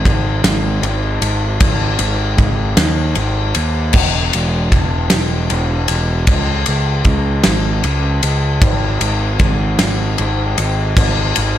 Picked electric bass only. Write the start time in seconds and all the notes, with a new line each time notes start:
0.06 G#1
0.44 G#1
0.82 G#1
1.22 G#1
1.61 G#1
2.00 G#1
2.38 G#1
2.77 D#2
3.17 G#1
3.56 D#2
3.94 E1
4.34 E1
4.72 E1
5.12 E1
5.50 E1
5.89 E1
6.27 C#2
6.68 C#2
7.05 C#2
7.46 G#1
7.84 C#2
8.23 C#2
8.62 G#1
9.01 G#1
9.40 G#1
9.79 G#1
10.19 G#1
10.58 G#1
10.96 G#1
11.38 G#1